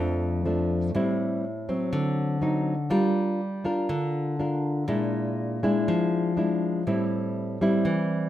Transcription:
0.00 0.91 F2 medium
0.00 0.41 F3 medium
0.00 0.41 A3 medium
0.00 0.41 D4 medium
0.45 0.90 F3 soft
0.45 0.91 A3 medium
0.45 0.91 D4 medium
0.95 1.90 A2 medium
0.95 1.44 G3 soft
0.95 1.44 C4 medium
0.95 1.44 E4 medium
1.69 2.38 F#3 medium
1.69 2.39 C4 medium
1.93 2.89 D3 medium
2.41 2.73 F#3 soft
2.41 2.74 C4 soft
2.41 2.74 D#4 medium
2.90 3.87 G3 medium
2.90 3.40 D4 medium
2.90 3.40 F4 medium
2.90 3.40 A#4 soft
3.64 4.35 D4 medium
3.64 4.35 F4 medium
3.64 4.36 A#4 medium
3.89 4.86 D3 medium
4.39 4.85 D4 soft
4.39 4.85 F4 soft
4.39 4.85 A#4 soft
4.88 5.85 A#2 medium
4.88 5.59 G#3 soft
4.88 5.59 D4 medium
4.88 5.59 E4 medium
5.63 6.33 G#3 medium
5.63 6.33 D4 medium
5.63 6.34 E4 medium
5.88 6.84 F3 medium
6.37 6.82 G#3 soft
6.37 6.83 D4 soft
6.37 6.83 E4 medium
6.87 7.83 A2 medium
6.87 7.57 G3 medium
6.87 7.57 C4 medium
6.87 7.58 E4 medium
7.61 8.29 G3 medium
7.61 8.29 C4 medium
7.61 8.29 E4 medium
7.85 8.29 E3 medium

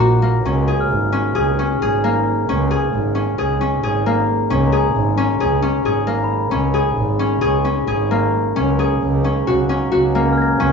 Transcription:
0.00 0.33 A#1 medium
0.00 0.22 A#3 medium
0.00 2.42 F#4 medium
0.00 0.27 A#5 medium
0.22 2.04 A#3 medium
0.44 0.82 C#2 medium
0.44 1.12 C#4 medium
0.68 1.35 G#4 medium
0.80 2.17 F6 medium
0.89 1.27 G#1 medium
1.12 1.58 C#4 medium
1.35 1.73 C#2 medium
1.35 1.81 G#4 medium
1.47 2.83 G#5 soft
1.59 2.48 C#4 medium
1.81 2.37 G#1 medium
1.81 2.70 G#4 medium
2.04 4.06 A#3 medium
2.49 2.86 C#2 medium
2.49 3.14 C#4 medium
2.71 3.38 G#4 medium
2.94 3.31 G#1 medium
3.15 3.60 C#4 medium
3.38 3.76 C#2 medium
3.38 3.83 G#4 medium
3.61 4.50 C#4 medium
3.83 4.39 G#1 medium
3.83 4.72 G#4 medium
4.06 6.06 A#3 medium
4.50 4.88 C#2 medium
4.50 5.17 C#4 medium
4.67 6.02 A#5 soft
4.72 5.40 G#4 medium
4.95 5.32 G#1 medium
5.17 5.62 C#4 medium
5.40 5.77 C#2 medium
5.40 5.85 G#4 medium
5.62 6.51 C#4 medium
5.85 6.41 G#1 medium
5.85 6.73 G#4 medium
6.07 8.11 A#3 medium
6.24 7.60 B5 medium
6.51 6.90 C#2 medium
6.51 7.19 C#4 medium
6.74 7.41 G#4 medium
6.97 7.35 G#1 medium
7.19 7.64 C#4 medium
7.41 7.80 C#2 medium
7.41 7.87 G#4 medium
7.47 8.76 C#6 soft
7.64 8.56 C#4 medium
7.87 8.45 G#1 medium
7.87 8.79 G#4 medium
8.11 10.15 A#3 medium
8.56 8.95 C#2 medium
8.56 10.72 F#3 medium
8.56 10.72 A#3 medium
8.56 9.24 C#4 medium
8.56 10.72 C#4 medium
8.79 10.72 G#4 medium
9.02 9.40 C#2 medium
9.24 9.69 C#4 medium
9.47 9.85 C#2 medium
9.47 9.91 F#4 medium
9.69 10.59 C#4 medium
9.92 10.48 C#2 medium
9.92 10.72 F#4 medium
10.15 10.72 A#3 medium
10.33 10.72 F6 medium
10.38 10.72 G#6 soft
10.42 10.72 A#6 medium
10.60 10.72 C#2 medium
10.60 10.72 C#4 medium

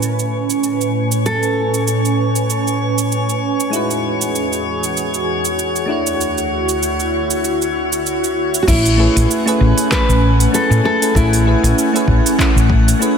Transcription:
0.00 3.68 A2 medium
0.00 3.68 A3 medium
0.00 3.68 C#4 medium
0.00 3.69 E4 medium
0.00 0.60 B4 medium
0.00 3.68 B4 medium
0.00 3.71 B4 medium
0.00 8.69 C#5 medium
0.00 3.68 G#5 medium
0.00 3.70 G#5 medium
0.00 8.69 C#6 medium
0.00 shaker soft
0.19 shaker soft
0.50 shaker medium
0.64 shaker medium
0.81 shaker soft
1.12 shaker medium
1.26 3.38 A4 loud
1.26 shaker soft
1.43 shaker soft
1.74 shaker medium
1.88 shaker soft
2.05 shaker soft
2.36 shaker medium
2.50 shaker soft
2.68 shaker soft
2.98 shaker medium
3.12 shaker medium
3.29 shaker soft
3.60 shaker medium
3.70 5.87 E2 medium
3.70 5.84 G#3 medium
3.70 5.85 D#4 medium
3.70 5.86 E4 medium
3.70 8.63 F#4 medium
3.70 5.87 G#4 medium
3.70 shaker medium
3.74 5.87 F#4 medium
3.74 5.88 B4 medium
3.91 shaker soft
4.21 shaker medium
4.35 shaker soft
4.53 shaker soft
4.84 shaker medium
4.97 shaker soft
5.14 shaker soft
5.45 shaker medium
5.59 shaker medium
5.76 shaker soft
5.86 8.64 D2 medium
5.86 8.63 A3 medium
5.86 8.63 D4 medium
5.86 8.64 E4 medium
5.91 8.65 F#4 medium
5.91 8.66 C#5 medium
6.07 shaker medium
6.21 shaker medium
6.38 shaker soft
6.69 shaker medium
6.83 shaker soft
7.00 shaker soft
7.31 shaker medium
7.44 shaker soft
7.62 shaker soft
7.93 shaker medium
8.06 shaker medium
8.24 shaker soft
8.54 shaker medium
8.62 8.68 F#4 medium
8.62 13.18 F#6 medium
8.67 9.06 A1 medium
8.67 13.18 A3 medium
8.67 13.18 C#4 medium
8.67 9.95 E4 medium
8.67 13.18 F#5 medium
8.67 13.18 G#5 medium
8.67 kick loud
8.67 crash loud
8.67 shaker medium
8.86 open hi-hat soft
8.86 shaker soft
8.97 9.42 A3 medium
8.97 9.42 C#4 medium
8.97 9.42 E4 medium
8.97 9.43 G#4 medium
8.97 9.43 B4 medium
9.16 9.25 A1 loud
9.16 open hi-hat medium
9.16 shaker medium
9.31 shaker medium
9.46 9.87 A3 medium
9.46 9.88 C#4 medium
9.46 9.88 E4 medium
9.46 9.89 G#4 medium
9.46 9.89 B4 loud
9.46 open hi-hat soft
9.46 shaker soft
9.61 9.72 A1 medium
9.78 open hi-hat medium
9.78 shaker medium
9.90 10.03 A3 medium
9.90 10.03 C#4 medium
9.90 10.03 E4 medium
9.90 10.04 G#4 medium
9.90 10.54 B4 loud
9.90 10.04 B4 medium
9.90 kick loud
9.90 clap medium
9.90 shaker medium
10.09 10.46 A1 medium
10.09 shaker soft
10.40 open hi-hat medium
10.40 shaker medium
10.52 10.80 A3 medium
10.52 10.81 C#4 medium
10.52 10.81 E4 medium
10.52 10.81 G#4 medium
10.52 10.83 A4 medium
10.52 10.82 B4 medium
10.52 shaker medium
10.70 10.79 A2 loud
10.70 shaker soft
10.83 10.96 A3 loud
10.83 10.96 C#4 medium
10.83 10.96 E4 medium
10.83 10.97 G#4 medium
10.83 11.17 A4 loud
10.83 10.97 B4 loud
11.01 11.42 A3 medium
11.01 11.43 C#4 medium
11.01 11.43 E4 medium
11.01 11.43 G#4 medium
11.01 11.44 B4 loud
11.01 open hi-hat medium
11.01 shaker medium
11.15 11.53 A1 loud
11.15 12.97 E4 medium
11.15 kick loud
11.15 shaker medium
11.33 open hi-hat soft
11.33 shaker soft
11.45 11.90 A3 medium
11.45 11.90 C#4 medium
11.45 11.90 E4 medium
11.45 11.91 G#4 medium
11.45 11.91 B4 medium
11.63 11.72 A1 loud
11.63 open hi-hat medium
11.63 shaker medium
11.79 shaker medium
11.93 12.35 A3 loud
11.93 12.35 C#4 medium
11.93 12.36 E4 medium
11.93 12.36 G#4 medium
11.93 12.37 B4 loud
11.93 open hi-hat soft
11.93 shaker soft
12.07 12.19 A1 loud
12.07 kick medium
12.26 open hi-hat medium
12.26 shaker medium
12.38 12.50 A3 medium
12.38 12.51 C#4 medium
12.38 12.51 E4 medium
12.38 12.51 G#4 medium
12.38 12.52 B4 medium
12.38 kick loud
12.38 clap medium
12.38 shaker medium
12.56 12.93 A1 medium
12.56 shaker soft
12.70 kick loud
12.88 open hi-hat medium
12.88 shaker medium
12.99 13.18 A3 medium
12.99 13.18 C#4 medium
12.99 13.18 E4 medium
12.99 13.18 G#4 medium
12.99 13.18 B4 medium
12.99 shaker medium

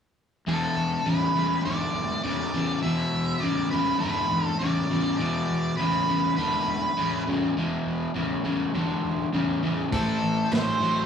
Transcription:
0.47 0.67 E1 medium
0.47 1.00 E2 medium
0.47 1.00 B2 medium
0.47 1.09 A4 medium
0.77 0.96 E1 medium
1.06 1.26 E1 medium
1.06 1.33 E2 medium
1.06 1.33 C#3 medium
1.06 1.65 B4 medium
1.35 1.55 E1 medium
1.35 1.62 E2 medium
1.35 1.62 C#3 medium
1.65 1.85 E1 medium
1.65 2.18 E2 medium
1.65 2.18 D3 medium
1.65 2.22 D5 medium
1.94 2.14 E1 medium
2.23 2.44 E1 medium
2.23 2.51 E2 medium
2.23 2.51 C#3 medium
2.23 2.79 D5 medium
2.54 2.80 E2 medium
2.54 2.74 E2 medium
2.54 2.81 C#3 medium
2.83 3.03 E1 medium
2.83 3.37 E2 medium
2.83 3.37 B2 medium
2.83 3.44 E5 loud
3.14 3.33 E1 medium
3.40 3.62 E1 medium
3.40 3.69 E2 medium
3.40 3.69 C#3 medium
3.40 3.70 D5 loud
3.71 3.92 E1 medium
3.71 3.99 E2 medium
3.71 3.99 C#3 medium
3.71 3.98 B4 medium
3.99 4.21 E1 medium
3.99 4.55 E2 medium
3.99 4.55 D3 medium
3.99 4.47 B4 medium
4.32 4.51 E1 loud
4.47 4.59 A4 medium
4.59 4.81 E1 medium
4.59 4.87 E2 medium
4.59 4.88 C#3 medium
4.59 5.16 D5 medium
4.90 5.17 E2 medium
4.90 5.11 E2 medium
4.90 5.17 C#3 loud
5.17 5.40 E1 medium
5.17 5.73 E2 medium
5.17 5.73 B2 medium
5.17 5.77 D5 loud
5.50 5.70 E1 medium
5.77 5.99 E1 medium
5.77 6.05 E2 medium
5.77 6.06 C#3 medium
5.77 6.35 B4 medium
6.08 6.29 E1 medium
6.08 6.35 E2 medium
6.08 6.35 C#3 medium
6.36 6.58 E1 medium
6.36 6.91 E2 medium
6.36 6.91 D3 medium
6.36 7.22 B4 medium
6.67 6.87 E1 medium
6.97 7.17 E1 medium
6.97 7.24 E2 medium
6.97 7.24 C#3 loud
7.27 7.53 E2 medium
7.27 7.47 E2 medium
7.27 7.54 C#3 medium
7.57 7.76 E1 medium
7.57 8.10 E2 medium
7.57 8.10 B2 medium
7.86 8.06 E1 medium
8.14 8.35 E1 medium
8.14 8.42 E2 medium
8.14 8.42 C#3 medium
8.44 8.65 E1 medium
8.44 8.71 E2 medium
8.44 8.72 C#3 medium
8.74 8.94 E1 medium
8.74 9.28 E2 medium
8.74 9.28 D3 medium
9.05 9.24 E1 medium
9.33 9.54 E1 medium
9.33 9.60 E2 medium
9.33 9.60 C#3 medium
9.63 9.90 E2 medium
9.63 9.83 E2 medium
9.63 9.90 C#3 medium
9.92 10.12 A1 medium
9.92 10.46 A2 medium
9.92 10.46 E3 medium
9.92 11.06 C4 medium
9.92 11.06 E4 medium
9.92 11.06 G4 medium
9.92 10.54 A4 medium
9.92 11.06 C5 medium
9.92 kick loud
9.92 open hi-hat medium
10.22 10.42 A1 medium
10.52 10.71 A1 medium
10.52 10.79 A2 medium
10.52 10.79 F#3 medium
10.52 11.04 C5 medium
10.52 snare loud
10.52 open hi-hat medium
10.80 11.00 A1 medium
10.80 11.06 A2 medium
10.80 11.06 F#3 medium

